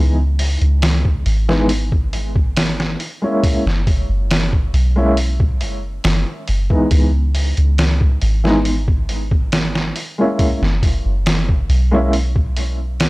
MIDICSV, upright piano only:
0, 0, Header, 1, 2, 480
1, 0, Start_track
1, 0, Tempo, 869565
1, 1898, Time_signature, 4, 2, 24, 8
1, 7228, End_track
2, 0, Start_track
2, 0, Title_t, "Upright piano"
2, 0, Program_c, 0, 0
2, 0, Note_on_c, 0, 52, 71
2, 0, Note_on_c, 0, 56, 63
2, 0, Note_on_c, 0, 59, 62
2, 0, Note_on_c, 0, 63, 75
2, 72, Note_off_c, 0, 52, 0
2, 74, Note_off_c, 0, 56, 0
2, 78, Note_off_c, 0, 59, 0
2, 80, Note_off_c, 0, 63, 0
2, 820, Note_on_c, 0, 52, 87
2, 826, Note_on_c, 0, 56, 80
2, 830, Note_on_c, 0, 59, 79
2, 836, Note_on_c, 0, 63, 88
2, 923, Note_off_c, 0, 52, 0
2, 926, Note_off_c, 0, 56, 0
2, 927, Note_off_c, 0, 59, 0
2, 931, Note_off_c, 0, 63, 0
2, 1776, Note_on_c, 0, 56, 66
2, 1782, Note_on_c, 0, 58, 61
2, 1788, Note_on_c, 0, 61, 64
2, 1795, Note_on_c, 0, 64, 73
2, 1992, Note_off_c, 0, 56, 0
2, 1995, Note_off_c, 0, 58, 0
2, 1998, Note_off_c, 0, 61, 0
2, 2001, Note_off_c, 0, 64, 0
2, 2738, Note_on_c, 0, 56, 88
2, 2741, Note_on_c, 0, 58, 75
2, 2747, Note_on_c, 0, 61, 74
2, 2752, Note_on_c, 0, 64, 94
2, 2841, Note_off_c, 0, 56, 0
2, 2843, Note_off_c, 0, 58, 0
2, 2846, Note_off_c, 0, 61, 0
2, 2849, Note_off_c, 0, 64, 0
2, 3697, Note_on_c, 0, 52, 66
2, 3704, Note_on_c, 0, 56, 59
2, 3709, Note_on_c, 0, 59, 60
2, 3714, Note_on_c, 0, 63, 70
2, 3912, Note_off_c, 0, 52, 0
2, 3916, Note_off_c, 0, 56, 0
2, 3918, Note_off_c, 0, 59, 0
2, 3921, Note_off_c, 0, 63, 0
2, 4658, Note_on_c, 0, 52, 83
2, 4664, Note_on_c, 0, 56, 81
2, 4669, Note_on_c, 0, 59, 80
2, 4675, Note_on_c, 0, 63, 98
2, 4761, Note_off_c, 0, 52, 0
2, 4764, Note_off_c, 0, 56, 0
2, 4767, Note_off_c, 0, 59, 0
2, 4770, Note_off_c, 0, 63, 0
2, 5620, Note_on_c, 0, 56, 70
2, 5626, Note_on_c, 0, 58, 67
2, 5633, Note_on_c, 0, 61, 62
2, 5637, Note_on_c, 0, 64, 75
2, 5834, Note_off_c, 0, 56, 0
2, 5837, Note_off_c, 0, 58, 0
2, 5840, Note_off_c, 0, 61, 0
2, 5842, Note_off_c, 0, 64, 0
2, 6577, Note_on_c, 0, 56, 87
2, 6582, Note_on_c, 0, 58, 78
2, 6588, Note_on_c, 0, 61, 76
2, 6593, Note_on_c, 0, 64, 95
2, 6681, Note_off_c, 0, 56, 0
2, 6684, Note_off_c, 0, 58, 0
2, 6687, Note_off_c, 0, 61, 0
2, 6689, Note_off_c, 0, 64, 0
2, 7228, End_track
0, 0, End_of_file